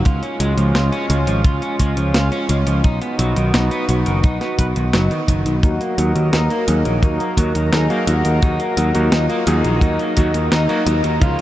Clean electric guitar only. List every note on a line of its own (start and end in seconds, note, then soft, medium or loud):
0.05 0.22 F4 medium
0.23 0.35 C#4 medium
0.40 0.53 G#3 loud
0.57 0.74 F3 medium
0.75 0.88 F4 medium
0.92 1.05 C#4 loud
1.10 1.18 G#3 medium
1.27 1.40 F3 medium
1.45 1.61 F4 medium
1.62 1.75 C#4 medium
1.80 1.92 G#3 loud
1.97 2.14 F3 medium
2.15 2.27 F4 medium
2.32 2.45 C#4 loud
2.49 2.57 G#3 medium
2.67 2.80 F3 medium
2.84 3.01 D#4 medium
3.02 3.15 B3 medium
3.19 3.32 F#3 loud
3.37 3.53 D#3 medium
3.54 3.67 D#4 medium
3.72 3.84 B3 loud
3.89 3.97 F#3 medium
4.06 4.19 D#3 medium
4.24 4.40 D#4 medium
4.41 4.54 B3 medium
4.59 4.66 B4 medium
4.76 4.84 D#3 medium
4.94 5.10 F#3 medium
5.11 5.19 D#3 medium
5.29 5.45 D#3 medium
5.46 5.54 D#3 medium
5.63 5.80 D#4 medium
5.81 5.94 A#3 medium
5.98 6.11 F#3 loud
6.16 6.32 D#3 medium
6.33 6.46 D#4 medium
6.51 6.63 A#3 loud
6.68 6.76 F#3 medium
6.86 6.98 D#3 medium
7.03 7.20 D#4 medium
7.21 7.33 A#3 medium
7.38 7.51 F#3 loud
7.55 7.72 D#3 medium
7.73 7.85 D#4 medium
7.90 8.03 A#3 loud
8.08 8.15 F#3 medium
8.25 8.38 D#3 medium
8.43 8.59 D#4 medium
8.60 8.73 A#3 medium
8.77 8.90 F#3 loud
8.95 9.11 D#3 medium
9.12 9.25 D#4 medium
9.30 9.42 A#3 loud
9.47 9.55 F#3 medium
9.65 9.77 D#3 medium
9.82 9.99 D#4 medium
10.00 10.12 A#3 medium
10.17 10.30 F#3 loud
10.34 10.51 D#3 medium
10.52 10.65 D#4 medium
10.69 10.82 A#3 loud
10.87 10.94 F#3 medium
11.04 11.17 D#3 medium
11.21 11.38 F4 medium